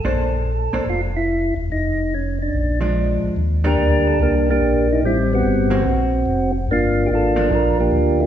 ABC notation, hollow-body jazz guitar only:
X:1
M:4/4
L:1/8
Q:"Swing" 1/4=145
K:Bb
V:1 name="Hollow-body jazz guitar"
[B,DAc] z2 [B,DAc] z4 | z4 z [F,_A,D]3 | [K:Eb] z [G,B,D]3 z4 | z3 [D,B,C_G] z4 |
z3 [F,B,D]3 z2 |]